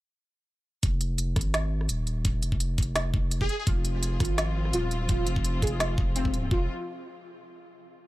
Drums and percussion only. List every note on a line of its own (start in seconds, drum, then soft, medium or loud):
0.83 kick loud
0.83 closed hi-hat medium
1.01 closed hi-hat medium
1.18 closed hi-hat medium
1.36 kick loud
1.36 cross-stick medium
1.36 closed hi-hat soft
1.41 closed hi-hat medium
1.54 snare loud
1.54 closed hi-hat medium
1.81 cross-stick soft
1.89 closed hi-hat medium
2.07 closed hi-hat soft
2.25 kick loud
2.25 closed hi-hat medium
2.43 closed hi-hat medium
2.52 kick medium
2.60 closed hi-hat medium
2.78 kick loud
2.78 closed hi-hat medium
2.83 closed hi-hat medium
2.96 snare loud
2.96 closed hi-hat medium
3.14 kick loud
3.31 closed hi-hat medium
3.41 kick medium
3.49 closed hi-hat soft
3.67 kick loud
3.67 closed hi-hat medium
3.85 closed hi-hat medium
4.03 closed hi-hat medium
4.20 kick loud
4.20 cross-stick medium
4.20 closed hi-hat soft
4.25 closed hi-hat medium
4.38 snare loud
4.38 closed hi-hat medium
4.65 cross-stick soft
4.73 closed hi-hat medium
4.91 closed hi-hat soft
5.09 kick loud
5.09 closed hi-hat medium
5.27 closed hi-hat medium
5.36 kick medium
5.45 closed hi-hat medium
5.62 kick loud
5.62 closed hi-hat soft
5.67 closed hi-hat medium
5.80 snare loud
5.80 closed hi-hat medium
5.98 kick loud
6.16 closed hi-hat medium
6.25 kick medium
6.34 closed hi-hat soft
6.51 kick loud